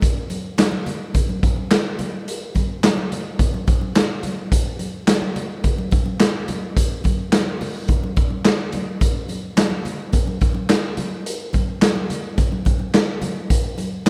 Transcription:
0.01 kick, closed hi-hat, muted conga
0.30 closed hi-hat, muted conga, high conga
0.58 snare, clap, closed hi-hat, muted conga, high conga
0.72 high conga
0.86 closed hi-hat, low conga
1.14 kick, closed hi-hat, low conga
1.29 high conga
1.43 kick, closed hi-hat
1.56 high conga
1.71 snare, clap, closed hi-hat, muted conga
1.99 closed hi-hat, high conga, low conga
2.28 closed hi-hat
2.55 kick, closed hi-hat, muted conga, high conga
2.83 snare, clap, closed hi-hat, muted conga, high conga
2.97 high conga
3.12 closed hi-hat, low conga
3.39 kick, closed hi-hat, muted conga, low conga
3.54 high conga
3.67 kick, closed hi-hat, muted conga
3.81 high conga
3.95 snare, clap, closed hi-hat, muted conga
4.23 closed hi-hat, high conga, low conga
4.52 kick, closed hi-hat
4.79 closed hi-hat, high conga
5.07 snare, clap, closed hi-hat, muted conga, high conga
5.22 high conga
5.36 closed hi-hat, low conga
5.64 kick, closed hi-hat, low conga
5.79 high conga
5.91 kick, closed hi-hat, muted conga
6.06 high conga
6.20 snare, clap, closed hi-hat, muted conga
6.48 closed hi-hat, high conga, low conga
6.77 kick, closed hi-hat
7.04 kick, closed hi-hat, muted conga, high conga
7.32 snare, clap, closed hi-hat, high conga
7.61 open hi-hat, muted conga, low conga
7.88 kick, closed hi-hat, muted conga, low conga
8.04 high conga
8.16 kick, closed hi-hat, muted conga
8.30 high conga
8.44 snare, clap, closed hi-hat
8.72 closed hi-hat, muted conga, high conga, low conga
9.01 kick, closed hi-hat, muted conga
9.29 closed hi-hat, muted conga, high conga
9.57 snare, clap, closed hi-hat, high conga
9.70 high conga
9.85 closed hi-hat, muted conga, low conga
10.13 kick, closed hi-hat, low conga
10.27 high conga
10.41 kick, closed hi-hat
10.54 high conga
10.69 snare, clap, closed hi-hat, muted conga
10.97 closed hi-hat, high conga, low conga
11.26 closed hi-hat
11.53 kick, closed hi-hat, high conga
11.82 snare, clap, closed hi-hat, high conga
11.95 high conga
12.10 closed hi-hat, muted conga, low conga
12.38 kick, closed hi-hat, muted conga, low conga
12.52 high conga
12.65 kick, closed hi-hat, muted conga
12.79 high conga
12.94 snare, clap, closed hi-hat
13.22 closed hi-hat, high conga, low conga
13.50 kick, closed hi-hat, muted conga
13.78 closed hi-hat, muted conga, high conga
14.06 closed hi-hat, high conga

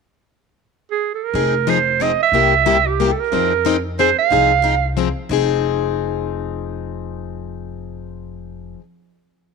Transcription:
0.91 G#4
1.14 A4
1.24 A#4
1.34 F1 F3 C4 D#4 G#4
1.67 F3 C4 D#4 G#4 C5
2.00 F3 C4 D#4 G#4 D#5
2.23 E5
2.32 C2 C3 G3 A#3 E4 G4
2.66 C3 G3 A#3 E4 G4
2.87 G4
3.00 C3 G3 A#3 E4 G4
3.12 A4
3.20 A#4
3.32 F2 F3 C4 D#4 G#4
3.65 F3 C4 D#4 G#4
3.99 F3 C4 D#4 G#4 C5
4.18 F5
4.30 C2 F3 C4 D#4 G#4
4.62 F3 C4 D#4 G#4
4.97 F3 C4 D#4 G#4
5.29 F1 F3 C4 D#4 G#4

